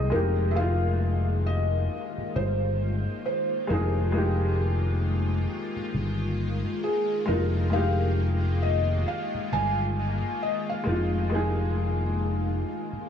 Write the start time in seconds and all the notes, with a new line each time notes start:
Already playing: C2 G#4 C5 D#5
0.10 F1 D#3 G#3 A#3 D#4 F4 A#4
0.16 G4
0.51 E5
0.55 G#3 A#3 D#4 F5
0.61 F4
1.46 D#5
2.18 muted fingered electric bass stroke
2.36 G1 C5
3.26 C5
3.67 F1 G#3 A#3 D#4 A#4
3.73 G#4
4.12 G#3 A#3 D#4
4.18 G4
5.76 muted fingered electric bass stroke
5.94 G1
6.84 G#4
7.26 F1 G#3 A#3 D#4 A#4
7.31 F4
7.70 G#3 A#3 D#4 F5
7.76 G4
8.62 D#5
9.08 F5
9.34 muted fingered electric bass stroke
9.52 G1 G#5
10.42 D#5
10.69 F5
10.84 F1 G#3 A#3 D#4
10.89 F4
11.29 G#3 A#3 D#4
11.35 G#4
12.93 muted fingered electric bass stroke